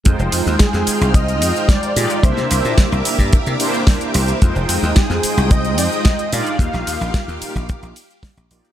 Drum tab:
RD |--x---x---x---x-|--x---x---x---x-|--x---x---x---x-|--x---x---x---x-|
HH |x-o-x-o-xxo-xxox|x-o-x-o-xxo-oxox|x-o-x-o-xxo-xxox|x-o-x-o-xxo-oxox|
SH |xxxxxxxxxxxxxxxx|xxxxxxxxxxxxxxxx|xxxxxxxxxxxxxxxx|xxxxxxxxxxxxxxxx|
SD |----oo------o---|-o--o-------o---|----oo------o---|-o--o-------o---|
BD |o---o---o---o---|o---o--oo---o---|o---o---o---o---|o---o--oo---o---|